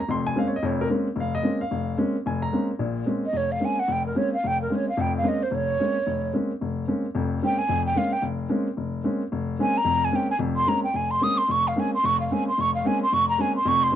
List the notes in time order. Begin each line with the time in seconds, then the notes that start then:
0.00 A#5
0.08 F1 F2 C6
0.27 G#5
0.36 G#3 A#3 C4 C#4 F5
0.48 C#5
0.56 D#5
0.63 F1 F2 C#5
0.81 A#4
0.90 G#3 A#3 C4 C#4
1.16 F1
1.20 F5
1.35 D#5
1.43 G#3 A#3 C4 C#4
1.61 F5
1.71 F1
1.98 G#3 A#3 C4 C#4
2.26 F1 G#5
2.42 A#5
2.53 G#3 A#3 C4 C#4
2.79 A#1 A#2
3.06 G#3 A#3 C4 C#4
3.26 D#5
3.33 F1
3.37 C#5
3.52 F5
3.60 G#3 A#3 C4 C#4
3.65 G#5
3.79 F#5
3.88 F1
3.92 G5
4.06 A#4
4.15 G#3 A#3 C4 C#4 C#5
4.33 F5
4.44 F1 G5
4.62 A#4
4.70 G#3 A#3 C4 C#4
4.75 C#5
4.89 F5
4.97 F1 F2 G5
5.17 F5
5.23 G#3 A#3 C4 C#4
5.28 D#5
5.43 C5
5.51 F1 C#5
5.79 G#3 A#3 C4 C#4
6.07 F1
6.34 G#3 A#3 C4 C#4
6.61 F1
6.88 G#3 A#3 C4 C#4
7.15 F1 F2
7.42 G#3 A#3 C4 C#4 G5
7.58 G#5
7.69 F1 F2
7.86 G5
7.95 G#3 A#3 C4 C#4 F5
8.13 G5
8.22 F1
8.49 G#3 A#3 C4 C#4
8.77 F1
9.04 G#3 A#3 C4 C#4
9.32 F1
9.59 G#3 A#3 C4 C#4 G#5
9.77 A#5
9.85 F1 F2
10.05 G#5
10.12 G#3 A#3 C4 C#4 G5
10.31 G#5
10.39 F1 F2
10.56 C6
10.66 G#3 A#3 C4 C#4 A#5
10.84 G5
10.94 F1 G#5
11.11 C6
11.21 G#3 A#3 C4 C#4 D#6
11.38 C6
11.48 F1 C#6
11.68 F5
11.76 G#3 A#3 C4 C#4 G#5
11.94 C6
12.04 F1 C#6
12.20 F5
12.31 G#3 A#3 C4 C#4 G#5
12.48 C6
12.58 F1 C#6
12.74 F5
12.85 G#3 A#3 C4 C#4 G#5
13.03 C6
13.12 F1 C#6
13.29 A#5
13.38 G#3 A#3 C4 C#4 G#5
13.56 C6
13.65 F1 F2 C#6
13.83 C6
13.92 G#3 A#3 C4